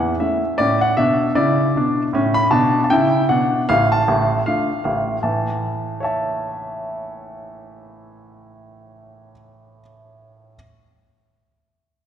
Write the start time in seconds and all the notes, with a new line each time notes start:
Already playing: E2 E3 F#5
0.20 A3 C#4 E4 E5
0.58 A2 C#4 D5
0.81 F#5
0.97 B2 D4 E5
1.35 C#3 E4 D5
1.76 B2 D4
2.13 A2 C#4
2.34 B5
2.50 B2 D4 A5
2.84 A5
2.90 C#3 E4 G5
3.29 B2 D4 F#5
3.69 A1 A2 F5
3.92 A5
4.08 A1 A2
4.46 A3 D4 F4 F5
4.84 A1 A2 F5
5.23 A2 E3 A5
6.00 C#5 E5 A5